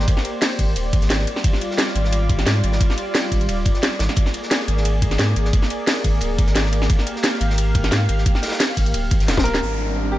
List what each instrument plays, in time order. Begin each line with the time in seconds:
Already playing: analog synth pad A#3 G4 C5 D5
0.08 sub bass G#1, kick, closed hi-hat, ride
0.17 snare
0.25 closed hi-hat, ride
0.41 snare, closed hi-hat, open hi-hat
0.59 sub bass G#1, kick, closed hi-hat, ride
0.76 sub bass D#1, closed hi-hat, ride
0.93 sub bass G#1, kick, closed hi-hat, ride
1.02 snare, closed hi-hat
1.10 snare, closed hi-hat, ride
1.19 snare
1.27 analog synth pad G3 F4, closed hi-hat, ride
1.36 snare
1.44 sub bass G#1, kick, closed hi-hat, ride
1.53 snare
1.61 closed hi-hat, ride
1.71 snare
1.78 snare, closed hi-hat, ride
1.87 snare
1.95 sub bass G#1, closed hi-hat, ride
2.04 snare
2.12 closed hi-hat, ride
2.29 kick, closed hi-hat, ride
2.39 snare, closed hi-hat
2.46 sub bass G#2, snare, closed hi-hat, ride
2.63 sub bass G#1, closed hi-hat, ride
2.72 snare
2.81 sub bass G#1, kick, closed hi-hat, ride
2.90 snare
2.97 closed hi-hat, ride
3.15 snare, closed hi-hat, open hi-hat
3.32 sub bass G#1, kick, closed hi-hat, ride
3.41 closed hi-hat
3.49 sub bass D#1, closed hi-hat, ride
3.65 kick, closed hi-hat, ride
3.74 snare, closed hi-hat
3.83 snare, closed hi-hat, ride
3.91 snare
3.99 sub bass G#1, snare, closed hi-hat, ride
4.09 snare, closed hi-hat
4.16 sub bass G#1, analog synth pad A#3 G#4, kick, closed hi-hat, ride
4.26 snare
4.34 closed hi-hat, ride
4.43 snare
4.51 snare, closed hi-hat, ride
4.60 snare
4.68 sub bass G#1, closed hi-hat, ride
4.77 snare
4.85 closed hi-hat, ride
5.02 kick, closed hi-hat, ride
5.11 snare, closed hi-hat
5.18 sub bass G#2, snare, closed hi-hat, ride
5.36 sub bass G#1, closed hi-hat, ride
5.45 snare
5.53 sub bass G#1, kick, closed hi-hat, ride
5.62 snare
5.70 closed hi-hat, ride
5.87 snare, closed hi-hat, open hi-hat
6.04 sub bass G#1, kick, closed hi-hat, ride
6.21 sub bass D1, closed hi-hat, ride
6.39 sub bass G#1, kick, closed hi-hat, ride
6.47 snare, closed hi-hat
6.55 snare, closed hi-hat, ride
6.65 snare
6.72 closed hi-hat, ride
6.82 snare
6.89 sub bass G#1, analog synth pad G4 F5, kick, closed hi-hat, ride
6.98 snare
7.06 closed hi-hat, ride
7.16 snare
7.23 snare, closed hi-hat, ride
7.33 snare
7.41 sub bass G#1, closed hi-hat, ride
7.50 snare
7.58 closed hi-hat, ride
7.75 kick, closed hi-hat, ride
7.84 snare, closed hi-hat
7.91 sub bass G#2, snare, closed hi-hat, ride
8.09 sub bass G#1, closed hi-hat, ride
8.18 snare
8.26 sub bass G#1, kick, closed hi-hat, ride
8.35 snare
8.43 snare, closed hi-hat, ride
8.47 snare, ride
8.52 snare, ride
8.60 snare, closed hi-hat, open hi-hat
8.77 sub bass G#1, kick, closed hi-hat, ride
8.86 closed hi-hat
8.94 sub bass D1, closed hi-hat, ride
9.11 sub bass G#1, kick, closed hi-hat, ride
9.20 snare, closed hi-hat
9.28 sub bass D1, snare, closed hi-hat, ride
9.37 grand piano C5, kick, snare, high tom, ride
9.44 sub bass D1, grand piano A#4, closed hi-hat, ride
9.54 snare, closed hi-hat
9.62 sub bass G#1, analog synth pad G3 C4 D4 A#4, downlifter
10.12 grand piano G4